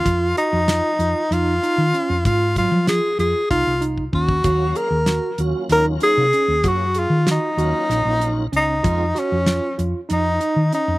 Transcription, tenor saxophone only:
\new Staff \with { instrumentName = "Tenor saxophone" } { \time 7/8 \key f \phrygian \tempo 4 = 96 f'8 ees'4. f'4. | f'8 f'8 aes'8 aes'8 f'8 r8 ges'8~ | ges'8 bes'4 r8 bes'8 aes'4 | ges'8 f'8 ees'2 ees'8~ |
ees'8 des'4 r8 ees'4 ees'8 | }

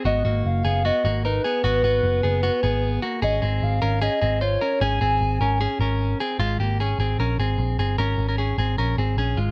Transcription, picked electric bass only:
\new Staff \with { instrumentName = "Picked electric bass" } { \clef bass \time 4/4 \key des \lydian \tempo 4 = 151 aes,,8 aes,,8 fis,,8 fis,,8. r16 aes,,4 r8 | aes,,8 aes,,8 fis,,8 fis,,8. r16 aes,,4 r8 | aes,,8 aes,,8 aes,,8 aes,,8. r16 aes,,4 r8 | aes,,8 aes,,8 aes,,8 aes,,8. r16 aes,,4 r8 |
aes,,8 aes,,4 aes,,8 bes,,8 aes,,8 bes,,8 g,,8 | aes,,8 aes,,4 aes,,8 bes,,8 aes,,8 bes,,8 aes,,8 | }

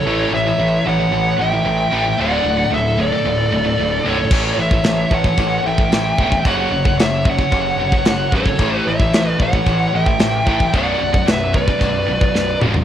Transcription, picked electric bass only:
\new Staff \with { instrumentName = "Picked electric bass" } { \clef bass \time 4/4 \key a \mixolydian \tempo 4 = 112 a,,8 a,,8 a,,8 a,,8 a,,8 a,,8 a,,8 a,,8 | d,,8 d,,8 d,,4 d,,8 d,,8 d,,8 b,,,8 | a,,8 a,,8 a,,8 a,,8 a,,8 a,,8 a,,8 e,,8 | fis,,8 fis,,8 fis,,4 fis,,8 fis,,8 fis,,8 gis,,8 |
a,,8 a,,8 a,,8 a,,8 a,,8 a,,8 a,,8 a,,8 | b,,,8 b,,,8 b,,,4 b,,,8 b,,,8 b,,,8 e,,8 | }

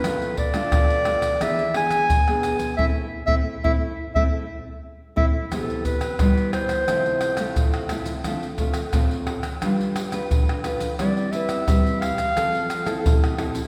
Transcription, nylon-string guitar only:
\new Staff \with { instrumentName = "Nylon-string guitar" } { \time 4/4 \key a \minor \tempo 4 = 88 << { <a d' f'>8 r16 <a d' f'>8. <a d' f'>16 r16 <b d' gis'>16 r16 <b d' gis'>8 r16 <b d' gis'>8. | <a c' e'>16 r8 <a c' e'>16 r16 <a c' e'>16 r8 <a c' e'>16 r4 r16 <a c' e'>16 r16 | \key c \major <b e' g'>8. r16 <b e' g'>4 <a e' f'>8. <a e' f'>8. <a e' f'>16 r16 | <a c' f'>16 r16 <a c' f'>16 r16 <a c' f'>8. r16 <d' f' b'>8. <d' f' b'>8. <d' f' b'>8 |
<c' e' b'>8 <c' e' b'>8 <c' e' b'>8. r16 <c' a'>8 r16 <c' e' a'>8. <c' e' a'>16 r16 | } \\ { b,4 b,4 e4 b,4 | r1 | c4 g4 c4 c4 | d4 a,4 g4 d4 |
g4 g4 f4 c4 | } >> }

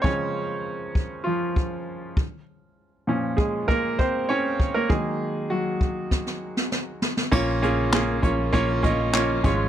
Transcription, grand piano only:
<<
  \new Staff \with { instrumentName = "Grand piano" } { \time 4/4 \key bes \minor \tempo 4 = 99 <des' des''>2 <f f'>4 r4 | r4. <aes aes'>8 <bes bes'>8 <c' c''>8 <des' des''>8. <bes bes'>16 | <aes aes'>4 <ges ges'>4 r2 | <bes des' f' des''>8 <bes des' f' aes'>8 <bes des' f' aes'>8 <bes des' f' des''>8 <bes des' f' des''>8 <bes des' f' ees''>8 <bes des' f' des''>8 <aes des' f' des''>8 | }
  \new Staff \with { instrumentName = "Grand piano" } { \clef bass \time 4/4 \key bes \minor <des f aes>8 r2. r8 | r4 <bes, f des'>8 r2 r8 | <ees ges bes>1 | bes,4. r2 aes,8 | }
>>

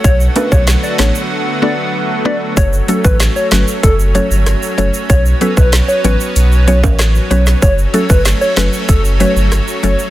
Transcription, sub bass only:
\new Staff \with { instrumentName = "Sub bass" } { \clef bass \time 4/4 \key fis \phrygian \tempo 4 = 95 b,,8 r16 b,,8 r16 a,,16 r2 r16 | fis,,8 r16 a,,8 r16 g,,16 r16 fis,,8. g,,8 r16 fis,,16 r16 | b,,8 r16 b,,8 r16 a,,16 r16 b,,8. a,,8. b,,8 | fis,,8 r16 g,,8 r16 fis,,16 r16 fis,,8. g,,8 r16 fis,,16 r16 | }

